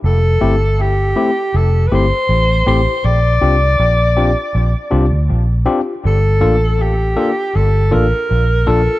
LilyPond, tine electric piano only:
\new Staff \with { instrumentName = "Tine electric piano" } { \time 4/4 \key f \major \tempo 4 = 80 r8 <a c' e' g'>16 r8. <a c' e' g'>16 r8. <a c' e' g'>16 r8. <a c' e' g'>16 <e' g'>16 | r8 <c' d' f' g'>16 r8. <c' d' f' g'>16 r8. <c' d' f' g'>16 r8. <c' d' f' g'>16 <f' g'>16 | r8 <bes d' f' a'>16 r8. <bes d' f' a'>16 r8. <bes d' f' a'>16 r8. <bes d' f' a'>16 r16 | }